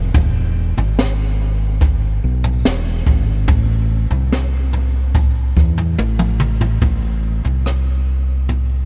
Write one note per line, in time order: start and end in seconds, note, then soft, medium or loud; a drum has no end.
0.00 0.12 F1 medium
0.14 0.73 E1 medium
0.14 kick loud
0.14 floor tom loud
0.77 2.19 G#1 medium
0.77 floor tom medium
0.99 snare medium
1.81 kick medium
1.81 floor tom medium
2.24 2.62 B1 medium
2.44 floor tom medium
2.65 3.04 E1 medium
2.65 snare loud
3.06 3.45 G#1 medium
3.06 kick medium
3.06 floor tom medium
3.48 4.07 A1 medium
3.48 kick medium
3.48 floor tom loud
4.11 5.53 C2 medium
4.11 floor tom medium
4.32 snare medium
4.73 floor tom medium
5.15 kick medium
5.15 floor tom medium
5.57 5.96 E2 medium
5.57 kick medium
5.78 floor tom medium
5.98 6.78 A1 medium
5.98 high tom medium
6.19 mid tom medium
6.40 mid tom medium
6.61 floor tom medium
6.82 7.40 A1 medium
6.82 kick medium
6.82 floor tom medium
7.45 8.85 C2 medium
7.45 floor tom medium
7.66 cross-stick medium
8.49 floor tom medium